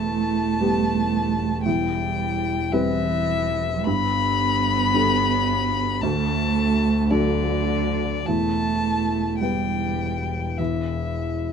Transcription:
Already playing: E1 E2 A3 A5
0.61 G3 B3 G4
1.65 E2 G3 G5
2.72 E3 G3 C4 B4 E5
3.85 G1 G2 B3 B5
4.94 G3 D4 A4
6.01 D2 A3 A5
7.11 D3 F#3 D4 A4 D5
8.27 E1 E2 A3 A5
9.40 G3 B3 B4 G5
10.58 E2 E3 E5

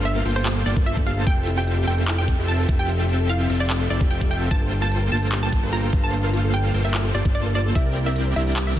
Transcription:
Already playing: G1 G3 A#3 F4 A4 C5 F5
0.05 E5, closed hi-hat
0.16 A#4
0.25 G1 A#3 F4 A4 C5 G5, open hi-hat
0.31 closed hi-hat
0.36 A4 C5, closed hi-hat
0.41 closed hi-hat
0.46 G4, clap, closed hi-hat
0.56 A4
0.66 G1 A#3 F4 A4 C5 D5 G5, closed hi-hat
0.76 G1 A#3 F4 A4 A#4 C5 A5, kick
0.86 F4 E5, closed hi-hat
0.97 A4, kick
1.06 G4 F5, closed hi-hat
1.17 A4
1.27 F1 F3 C4 F4 G4 A4 E5 G5, kick, closed hi-hat
1.37 A4
1.47 E4, closed hi-hat
1.58 G4 G5
1.67 F4, closed hi-hat
1.78 G4
1.87 F1 C4 F4 A4 E5 G5, open hi-hat
1.93 closed hi-hat
1.98 A4, closed hi-hat
2.03 closed hi-hat
2.08 E4, clap
2.18 G4 G5
2.28 F4, kick, closed hi-hat
2.39 F1 C4 F4 G4 A4 E5 G5
2.48 A5, closed hi-hat
2.59 A4
2.69 F1 C4 E4 F4 A4 E5 G5, kick, closed hi-hat
2.79 G4 G5
2.89 F4, closed hi-hat
3.00 G4
3.09 closed hi-hat
3.20 A4
3.29 E4 F5, closed hi-hat
3.40 G4
3.50 F1 C4 F4 A4 E5 G5, open hi-hat
3.55 closed hi-hat
3.60 G4 D5, closed hi-hat
3.65 closed hi-hat
3.70 clap, closed hi-hat
3.81 A4
3.90 F1 C4 E4 F4 A4 D5 E5 G5, closed hi-hat
4.01 G4, kick
4.11 F4 G5, closed hi-hat
4.21 G4, kick
4.31 G5, closed hi-hat
4.41 A4
4.51 G1 G3 A#3 F4 A4 C5 G5 A5, kick, closed hi-hat
4.62 A4
4.71 G4, closed hi-hat
4.82 A4 A5
4.92 closed hi-hat
5.02 A#4
5.12 G1 A#3 F4 A4 C5 G5 A5, open hi-hat
5.17 closed hi-hat
5.22 A4, closed hi-hat
5.27 closed hi-hat
5.32 G4, clap, closed hi-hat
5.43 A4 A5
5.52 kick, closed hi-hat
5.63 G1 A#3 F4 A4 A#4 C5 G5
5.73 F4 A#5, closed hi-hat
5.83 A4
5.93 G1 A#3 F4 G4 A4 C5 F5, kick, closed hi-hat
6.04 A4 A5
6.13 closed hi-hat
6.24 A#4
6.33 F4, closed hi-hat
6.44 A4
6.54 G4 G5, closed hi-hat
6.64 A4
6.74 G1 A#3 F4 A4 C5 G5, open hi-hat
6.79 closed hi-hat
6.85 A#4 E5, closed hi-hat
6.89 closed hi-hat
6.94 F4, clap, closed hi-hat
7.05 A4
7.15 G1 A#3 F4 G4 A4 C5 D5 G5, closed hi-hat
7.25 G1 A#3 F4 A4 C5 A5, kick
7.35 D5, closed hi-hat
7.45 A#4
7.55 F4 D5, closed hi-hat
7.66 A4
7.75 C2 C3 A#3 C4 D4 E4 A#4 D5 E5 G5, kick, closed hi-hat
7.86 A#4
7.96 G4, closed hi-hat
8.06 A#4 E5
8.16 closed hi-hat
8.26 C5
8.36 C2 C4 E4 A#4 D5 E5 G5, open hi-hat
8.41 closed hi-hat
8.47 A#4, closed hi-hat
8.52 closed hi-hat
8.56 G4, clap, closed hi-hat
8.67 A#4 E5
8.77 kick, closed hi-hat

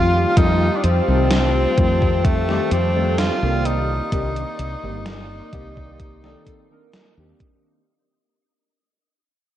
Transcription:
Already playing: F2 D#3 G3 A3 C4 F4 G4 F5 A5
0.36 F2 D#3 G3 A3 C4 D#4 F4, kick, closed hi-hat
0.77 D4
0.84 F2 C4, closed hi-hat
1.07 C2 D#3 G3 A3 C4 F4
1.31 snare, closed hi-hat
1.77 F2 D#3 G3 A3 C4 F4, kick, closed hi-hat
2.02 kick
2.25 A3, kick, closed hi-hat
2.48 D#3 G3 A3 C4 G4, snare
2.71 F2 C4, closed hi-hat
2.95 D#3 G3 A3 C4 A4
3.18 F4, snare, closed hi-hat
3.42 C2 D#3 A#3 C4 G4 D5
3.65 A#3 D#4 D5 C6, closed hi-hat
4.11 C2 D#3 A#3 C4 D4 G4, kick, closed hi-hat
4.36 closed hi-hat
4.59 C2, closed hi-hat
4.82 G1 D#3 A#3 C4 G4 D5
5.06 snare, closed hi-hat
5.52 C2 D#3 A#3 C4 G4 D5, kick, closed hi-hat
5.77 kick
6.00 kick, closed hi-hat
6.23 D#3 A#3 C4 A4 D5, snare
6.47 kick, closed hi-hat
6.70 D#3 A#3 C4 D4 A#4
6.94 snare, closed hi-hat
7.17 D#2 D#3 A#3 C4 D4 G4
7.40 kick, closed hi-hat

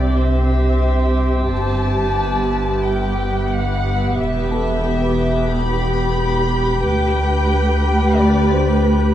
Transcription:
Already playing: C2 C3 C4 G4 C5 D5 E5 E6, impact
0.17 E5
1.51 G1 G2 B4 A5
2.18 B3
2.84 G5
3.51 F#5
4.18 E1 E2 G4 E5 G5 B6
4.51 A4 A5
4.84 G6
5.51 B5
6.84 D2 B4 G5 B5
8.18 D5
8.51 C5

